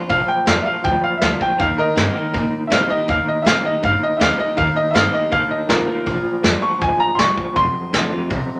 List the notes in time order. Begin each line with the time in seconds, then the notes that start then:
0.09 A#1 A#2 F3 F5, kick, open hi-hat
0.28 G5, muted upright bass stroke
0.46 F2 A#2 F3 G3 A#3 D4 F4 F5, snare, open hi-hat
0.62 F4 E5
0.66 A#2 F3 D4 F5, muted upright bass stroke
0.84 D2 F2 A#2 F3 G5, kick, open hi-hat
1.03 F5, muted upright bass stroke
1.17 F3 E5
1.21 D2 A#2 G3 A#3 D4 F4 F5, snare, open hi-hat
1.40 A#2 F3 D4 F4 G5, muted upright bass stroke, kick
1.58 D#2 D#3 A#3 F5, kick, open hi-hat
1.78 A#4 D#5
1.96 G2 D#3 G3 A#3 C4 D#4 G4, snare, open hi-hat
2.15 D#3 A#3 D#4 G4, muted upright bass stroke
2.33 A#2 D#3 A#3, kick, open hi-hat
2.67 A#2 D#3 G3 A#3 C4 D#4 E5
2.72 G4 F5, snare
2.89 D#3 A#3 D#4 G4 D#5, muted upright bass stroke
3.08 D#2 D#3 A#3 F5, kick, open hi-hat
3.28 D#5, muted upright bass stroke
3.42 A#2 G3 A#3 D#4 G4 E5
3.46 D#3 C4 F5, snare
3.64 D#3 A#3 D#4 G4 D#5
3.83 G2 A#2 D#3 A#3 F5, kick, open hi-hat
4.01 D#5, muted upright bass stroke
4.17 D#2 D#3 G3 A#3 C4 E5
4.21 D#4 G4 F5, snare, open hi-hat
4.38 D#3 A#3 D#4 G4 D#5, muted upright bass stroke
4.57 D#2 D#3 A#3 F5, kick, open hi-hat
4.76 D#5, muted upright bass stroke
4.91 G2 D#3 G3 A#3 D#4 E5
4.95 C4 G4 F5, snare, open hi-hat
5.13 D#3 A#3 D#4 G4 D#5
5.31 A#2 D#3 A#3 D4 F5, kick, open hi-hat
5.50 D#5, muted upright bass stroke
5.69 A1 C3 D#3 C4 F4 A#4, snare, open hi-hat
5.88 D#3 A#3, muted upright bass stroke
6.06 A#1 A#2 F3, kick, open hi-hat
6.24 muted upright bass stroke
6.43 F2 A#2 F3 G3 A#3 D4 F4, snare
6.62 A#2 F3 D4 F4 C#6, muted upright bass stroke
6.81 D2 G#2 A#2 F3 G#5, kick, open hi-hat
7.00 A#5
7.15 A#1 G2 A#2 C6, snare, open hi-hat
7.19 G3 C#6
7.38 A#2 F3, kick
7.56 F1 F2 C3 C6, kick, open hi-hat
7.74 muted upright bass stroke
7.93 A1 F2 D3 F3 A3 C4 F4, snare, open hi-hat
8.10 F2 C3 C4 F4
8.30 C2 F2 C3, kick, open hi-hat
8.48 muted upright bass stroke